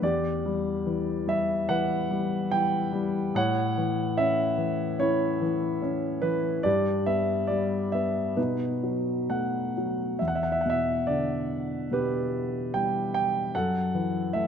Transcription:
0.02 E2 G4 D5
0.46 G3
0.86 E3
1.27 G3 E5
1.69 E3 B4 F#5
2.11 G3
2.51 E3 G5
2.93 G3
3.35 A2 C#5 F#5
3.78 E3
4.18 C#4 E5
4.58 E3
4.99 C#4 E4 C#5
5.42 E3
5.82 C#4
6.22 E3 B4
6.63 G2 G4 D5
7.06 B3 E5
7.47 G3 D5
7.92 B3 E5
8.37 B2 D#4 B4
8.83 F#3
9.30 A3 F#5
9.77 F#3
10.19 E2 E5
10.28 F#5
10.35 E5
10.43 F#5
10.52 E5
10.61 F#5
10.66 B2
10.70 E5
11.07 D3 D5
11.91 B2 G4 B4
12.74 G3 G5
13.14 G5
13.55 F#2 A4 F#5
13.95 E3
14.33 A3 E5

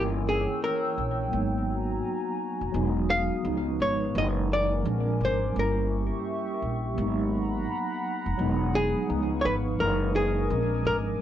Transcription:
Already playing: G1 E3 A#3 C#4 E4 C#5 G5 E6
0.29 G#4
0.64 A#4
0.98 A#1
1.28 F#3 A#3
1.32 G#1 B3 F#4 G#5 A#5
1.36 D#4
2.61 F1
2.72 E1 F#3 G#3 B3 D#4 G#4 D#6
3.10 F5
3.43 C#2 F3 G#3 B3 B4 F5 C#6
3.47 D#4
3.80 G#1 C#5
4.14 F#1 E3 G#3 A#3 D#4 A#4 D#5 F#5 G#5 A#5
4.53 D5
4.83 A#1 F3 G#3 C4 G#5 D6
4.87 D4
5.20 G#1
5.25 C5
5.53 G1 G3 A#3 G4 E5 C#6
5.58 C#4 E4 A#4
6.62 A#1
6.94 G#1 F#3 A#3 F#5 A#5 B5
6.99 B3 D#4
8.26 F1
8.37 E1 F#3 G#3 B3 G#4 D#6
8.41 D#4
8.75 G#4
9.06 C#2 F3 G#3 B3 D#4 B4 F5 C#6
9.41 G#1 C#5
9.45 B4
9.78 F#1 E3 G#3 A3 A#4 D#5 G#5 D#6
9.82 D#4
9.87 A#3
10.16 G#4
10.49 A#1 F3 G#3 C4 C#4 D6
10.60 D4
10.85 G#1 A#4
11.17 G3

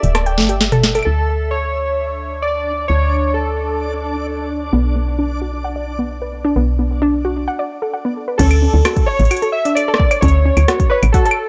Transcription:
Already playing: D5 E5
0.03 D1, closed hi-hat
0.15 A5, cross-stick, closed hi-hat, claves
0.26 G5, closed hi-hat
0.38 G1, snare
0.40 snare
0.42 snare
0.45 snare
0.47 G4, snare, closed hi-hat
0.61 snare, closed hi-hat
0.72 A4, closed hi-hat, mid tom
0.84 snare
0.95 A4, closed hi-hat, claves
0.99 claves
1.03 D2 D4 A4, claves
1.51 C#5
2.42 D5
2.88 D2 C#5
3.34 A4
4.73 B1 B3
4.96 B3
5.19 D4
5.42 F#4
5.64 F#5
5.76 D5
5.99 B3
6.22 B4
6.45 D4
6.56 B1 B3
6.79 B3
7.02 D4
7.25 F#4
7.48 F#5
7.59 D5
7.82 A4
7.93 F#5
8.05 B3
8.28 B4
8.38 D2 C#4 A4, kick, closed hi-hat, crash
8.51 closed hi-hat, claves
8.62 C#4
8.74 D2
8.85 F#4, cross-stick, closed hi-hat, claves
8.97 kick, closed hi-hat
9.06 C#5
9.19 A1, closed hi-hat
9.25 closed hi-hat
9.31 F#4, closed hi-hat, claves
9.37 closed hi-hat
9.42 A4, closed hi-hat
9.52 E5
9.65 D4, closed hi-hat
9.75 D5, closed hi-hat, claves
9.88 A4
9.94 cross-stick
9.98 D5, kick
10.11 C#5, closed hi-hat, claves
10.21 D2 C#4 C#5, kick, closed hi-hat
10.28 closed hi-hat
10.45 C#4
10.57 D2, closed hi-hat, claves
10.68 F#4, cross-stick, closed hi-hat
10.80 kick, closed hi-hat
10.90 B4 C#5
11.03 A1, closed hi-hat, claves
11.12 F#4 A4, kick, closed hi-hat
11.26 A4, closed hi-hat
11.31 claves

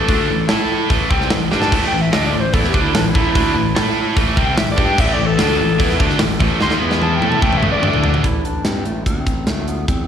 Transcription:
Already playing: A4
0.08 D2 D3 A3 D4, kick, open hi-hat
0.28 A1 A2 E3
0.48 A2 A3 E4 A4, snare, open hi-hat
0.90 A1 A2 E3 A3, kick, open hi-hat
1.10 C2 C3 G3 C4, kick
1.21 snare
1.30 A1 A2 E3, snare, open hi-hat
1.51 G2 G3 D4 G4, snare
1.60 A5, snare
1.71 A1 A2 E3 A3, kick, open hi-hat, crash
1.87 G5
1.92 A1 A2 E3
2.01 E5
2.12 D2 D3 A3 D4 D#5, snare, open hi-hat
2.26 D5
2.33 A1 A2 E3
2.40 C5
2.53 E2 E3 B3 E4 A4, kick, open hi-hat
2.64 G4, snare
2.73 D2 D3 A3 D4, kick
2.81 E4
2.94 A1 A2 E3 D4, snare, open hi-hat
3.09 E4
3.13 A1 A2 E3 A3, kick
3.34 D2 D3 A3 D4, kick, open hi-hat
3.54 A1 A2 E3
3.75 A2 A3 E4 A4, snare, open hi-hat
4.15 A1 A2 E3 A3, kick, open hi-hat
4.36 C2 C3 G3 C4, kick
4.45 G5
4.56 A1 A2 E3 E5, snare, open hi-hat
4.71 D5
4.76 G2 G3 D4 G4, kick
4.86 G5
4.96 A1 A2 E3 A3, kick, crash
5.00 E5
5.13 A2 E3 D5
5.18 A1
5.26 A4
5.37 D2 D3 A3 D4, snare, open hi-hat
5.57 A1 A2 E3
5.78 E2 E3 B3 E4, kick, open hi-hat
5.90 snare
5.98 D2 D3 A3 D4, kick
6.10 snare
6.19 A1 A2 E3, snare, open hi-hat
6.40 A1 A2 E3 A3, kick
6.60 D#2 D#3 A#3 D#4 C6, snare
6.70 snare
6.80 E2 E3 B3 E4
6.91 snare
7.02 A5, high tom
7.15 G5
7.21 A2 A3 E4 A4, high tom
7.29 A5, mid tom
7.41 A1 A2 E3 A3 G5, kick
7.53 mid tom
7.58 E5
7.63 mid tom
7.72 D5
7.82 D2 D3 A3 D4, mid tom
7.94 floor tom
8.04 floor tom
8.14 floor tom
8.24 A1 E4, kick, closed hi-hat
8.44 D4, closed hi-hat
8.65 G2 C4, snare, closed hi-hat
8.85 A1 A3, closed hi-hat
9.06 D2 C4, kick, closed hi-hat
9.27 A1, kick, closed hi-hat
9.47 D2 A3, snare, closed hi-hat
9.68 B3, closed hi-hat
9.88 E2 C4, kick, closed hi-hat

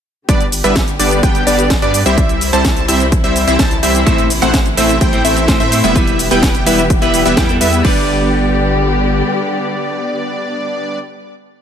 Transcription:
0.28 G1 D3 G3 B3 D4 G4 B4 D5, kick, closed hi-hat, shaker
0.41 closed hi-hat, shaker
0.52 open hi-hat, shaker
0.64 G1 G3 B3 D4 B4 E5, closed hi-hat, shaker
0.76 kick, snare, closed hi-hat, shaker
0.88 closed hi-hat, shaker
0.99 G1 G3 B3 D4 B4 D5, open hi-hat, shaker
1.11 closed hi-hat, shaker
1.23 G1 G3 B3 D4 B4 G5, kick, closed hi-hat, shaker
1.35 closed hi-hat, shaker
1.47 G1 G3 B3 D4 B4 D5, open hi-hat, shaker
1.59 closed hi-hat, shaker
1.70 kick, snare, closed hi-hat, shaker
1.82 G2 G3 B3 D4 B4 D5, closed hi-hat, shaker
1.94 open hi-hat, shaker
2.06 C2 G3 C4 E4 C5 E5, closed hi-hat, shaker
2.18 C3 E3 E4, kick, closed hi-hat, shaker
2.29 closed hi-hat, shaker
2.41 open hi-hat, shaker
2.53 C2 G3 C4 E4 C5 A5, closed hi-hat, shaker
2.65 kick, snare, closed hi-hat, shaker
2.77 closed hi-hat, shaker
2.88 C2 G3 C4 E4 C5 E5, open hi-hat, shaker
3.00 closed hi-hat, shaker
3.12 kick, closed hi-hat, shaker
3.24 C2 G3 C4 E4 C5 E5, closed hi-hat, shaker
3.36 open hi-hat, shaker
3.47 C2 G3 C4 E4 C5 E5, closed hi-hat, shaker
3.59 C2 G3 C4 E4 C5 A5, kick, snare, closed hi-hat, shaker
3.71 closed hi-hat, shaker
3.83 C2 G3 C4 E4 C5 E5, open hi-hat, shaker
3.95 closed hi-hat, shaker
4.06 A1 A2 A3 C4 E4 C5 E5, kick, closed hi-hat, shaker
4.18 closed hi-hat, shaker
4.30 open hi-hat, shaker
4.41 A1 A2 A3 C4 E4 C5 F#5, closed hi-hat, shaker
4.54 kick, snare, closed hi-hat, shaker
4.66 closed hi-hat, shaker
4.77 A1 A2 A3 C4 E4 C5 E5, open hi-hat, shaker
4.89 closed hi-hat, shaker
5.01 A1 A3 C4 E4 C5 G5, kick, closed hi-hat, shaker
5.12 A2 A3 C4 E4 C5, closed hi-hat, shaker
5.25 A1 A3 C4 E4 C5 E5, open hi-hat, shaker
5.37 closed hi-hat, shaker
5.48 A2 A3 C4 E4 C5, kick, snare, closed hi-hat, shaker
5.60 A2 A3 C4 E4 C5 E5, closed hi-hat, shaker
5.71 A3 C4 E4 C5, open hi-hat, shaker
5.84 E1 G3 B3 E4 B4 E5, closed hi-hat, shaker
5.95 E3 G3 B3 E4 G4 B4, kick, closed hi-hat, shaker
6.07 closed hi-hat, shaker
6.19 open hi-hat, shaker
6.30 E1 G3 B3 E4 B4 G5, closed hi-hat, shaker
6.43 kick, snare, closed hi-hat, shaker
6.55 closed hi-hat, shaker
6.66 E1 G3 B3 E4 B4 E5, open hi-hat, shaker
6.78 closed hi-hat, shaker
6.90 kick, closed hi-hat, shaker
7.01 E1 G3 B3 E4 B4 E5, closed hi-hat, shaker
7.14 open hi-hat, shaker
7.25 E1 G3 B3 E4 B4 E5, closed hi-hat, shaker
7.36 E2 G3 B3 E4 B4 G5, kick, snare, closed hi-hat, shaker
7.49 G3 B3 E4 A4, closed hi-hat, shaker
7.61 E2 G3 B3 E4 B4 E5, open hi-hat, shaker
7.73 closed hi-hat, shaker
7.83 G1 D3 G3 B3 D4 G4 B4 D5, kick, crash

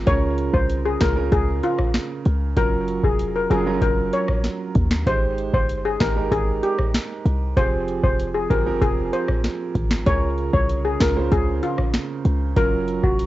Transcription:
0.06 C#2 C#3 C#4 F4 A#4 C#5, kick, closed hi-hat
0.38 closed hi-hat
0.54 C2 C5, kick
0.70 closed hi-hat
0.85 G#4
1.00 C#2 C#3 C#4 F4 A#4, finger snap, kick, snare, closed hi-hat
1.15 C#3 C#4 F4 A#4
1.32 C#2 G#4, kick, closed hi-hat
1.63 F4, closed hi-hat
1.78 kick, cross-stick
1.94 finger snap, snare, closed hi-hat
2.25 C#2, closed hi-hat
2.56 F#1 F#3 C#4 F4 A#4, kick, closed hi-hat
2.88 closed hi-hat
3.03 F1 G#4, kick
3.19 closed hi-hat
3.36 A#4
3.50 F#1 F#3 C#4 F4 G#4 A#4, closed hi-hat
3.66 F#3 C#4 F4 A#4
3.82 F#1 A#4, kick, closed hi-hat
4.13 C#5, closed hi-hat
4.28 kick, cross-stick
4.44 snare, closed hi-hat
4.75 D#2, kick, closed hi-hat
4.91 finger snap, snare
5.06 G#1 G#3 D#4 G4 C5, kick, closed hi-hat
5.38 closed hi-hat
5.54 G1 C5, kick
5.69 closed hi-hat
5.85 G#4
6.00 G#1 G#3 D#4 G4 A#4, finger snap, kick, snare, closed hi-hat
6.16 G#3 D#4 G4 A#4
6.32 G#1 G#4, kick, closed hi-hat
6.63 G4, closed hi-hat
6.78 kick, cross-stick
6.94 finger snap, snare, closed hi-hat
7.25 C2, closed hi-hat
7.56 F1 F3 C4 G4 G#4 C5, kick, closed hi-hat
7.88 closed hi-hat
8.04 F1 C5, kick
8.20 closed hi-hat
8.35 G#4
8.50 G1 F3 C4 G4 G#4 A#4, kick, closed hi-hat
8.66 F3 C4 G4 A#4
8.82 F1 G#4, kick, closed hi-hat
9.13 C5, closed hi-hat
9.28 kick, cross-stick
9.44 snare, closed hi-hat
9.75 G#1, kick, closed hi-hat
9.91 finger snap, snare
10.06 C#2 C#3 C#4 F4 A#4 C#5, kick, closed hi-hat
10.38 closed hi-hat
10.53 C2 C#5, kick
10.69 closed hi-hat
10.85 G#4
11.00 C#2 C#3 C#4 F4 A#4, finger snap, kick, snare, closed hi-hat
11.16 C#3 C#4 F4 C5
11.32 C#2 G#4, kick, closed hi-hat
11.63 F4, closed hi-hat
11.78 kick, cross-stick
11.94 finger snap, snare, closed hi-hat
12.25 C#2, closed hi-hat
12.56 F#1 F#3 C#4 F4 A#4, kick, closed hi-hat
12.88 closed hi-hat
13.03 F1 F#4, kick
13.19 closed hi-hat

